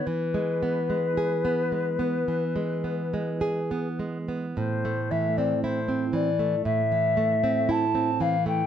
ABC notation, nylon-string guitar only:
X:1
M:4/4
L:1/16
Q:1/4=54
K:Am
V:1 name="Nylon-string guitar"
E, ^G, B, G, ^G B, G, B, E, G, B, G, G B, G, B, | A,, A, E, C E C E, A, A,, E, A, C E C E, A, |]